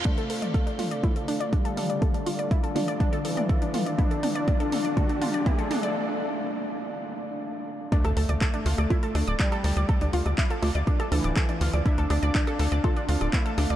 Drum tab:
HH |xxoxxxoxxxoxxxox|xxoxxxoxxxoxxxox|xxoxxxoxxxoxxxox|----------------|
CP |----------------|----------------|----------------|----------------|
SD |----------------|----------------|----------------|----------------|
T2 |o--o--o-o-----o-|o-----o-o--o--o-|o-o-o-o-o-o-o-o-|----------------|
BD |o---o---o---o---|o---o---o---o---|o---o---o---o---|----------------|

HH |xxoxxxoxxxoxxxox|xxoxxxoxxxoxxxox|xxoxxxoxxxoxxxox|
CP |----x-------x---|----x-------x---|----x-------x---|
SD |-r--r--r--r--r--|r--r--r--r--r--r|--r--r--r--r--r-|
T2 |----------------|----------------|----------------|
BD |o---o---o---o---|o---o---o---o---|o---o---o---o---|